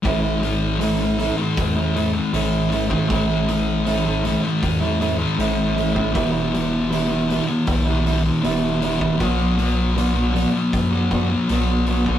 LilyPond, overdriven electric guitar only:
\new Staff \with { instrumentName = "Overdriven electric guitar" } { \time 4/4 \key a \major \tempo 4 = 79 <a, e a cis' e'>16 <a cis' e'>8. <a, e a cis' e'>8 <e a cis' e'>8. <a cis' e'>16 <e a cis' e'>8 <a, e a cis' e'>8 <e a cis' e'>16 <a cis' e'>16 | <a, e a cis' e'>16 <a cis' e'>8. <a, e a cis' e'>8 <e a cis' e'>8. <a cis' e'>16 <e a cis' e'>8 <a, e a cis' e'>8 <e a cis' e'>16 <a cis' e'>16 | <e, b, e g b e'>16 <e g b e'>8. <e, b, e g b e'>8 <e g b e'>8. <e g b e'>16 <e g b e'>8 <e, b, e g b e'>8 <e g b e'>16 <e g b e'>16 | <b, fis b d' fis'>16 <b d' fis'>8. <b, fis b d' fis'>8 <fis b d' fis'>8. <b d' fis'>16 <fis b d' fis'>8 <b, fis b d' fis'>8 <fis b d' fis'>16 <b d' fis'>16 | }